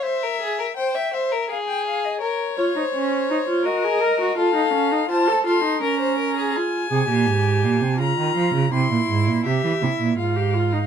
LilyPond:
<<
  \new Staff \with { instrumentName = "Violin" } { \time 3/4 \key bes \minor \tempo 4 = 83 e''4 g''8 e''8 f''16 g''16 f''16 ees''16 | des''2 ees''4 | f''4 a''8 c'''8 bes''4 | aes''2 bes''4 |
c'''4 e''4 f''4 | }
  \new Staff \with { instrumentName = "Violin" } { \time 3/4 \key bes \minor c''16 bes'16 aes'16 bes'16 c''16 e''16 c''16 bes'16 aes'4 | bes'8 des''16 c''4~ c''16 bes'4 | a'4 c''8 a'8 bes'16 c''16 bes'16 aes'16 | r2. |
r2. | }
  \new Staff \with { instrumentName = "Viola" } { \time 3/4 \key bes \minor r2. | r8 f'16 ees'16 des'8 ees'16 f'16 ges'16 aes'16 bes'16 ges'16 | f'16 ees'16 des'16 ees'16 f'16 a'16 f'16 ees'16 des'4 | f'8 aes'16 g'4~ g'16 f'4 |
e'4 g'8 e'8 f'16 g'16 f'16 ees'16 | }
  \new Staff \with { instrumentName = "Cello" } { \clef bass \time 3/4 \key bes \minor r2. | r2. | r2. | r8 c16 bes,16 aes,8 bes,16 c16 des16 ees16 f16 des16 |
c16 bes,16 aes,16 bes,16 c16 e16 c16 bes,16 aes,4 | }
>>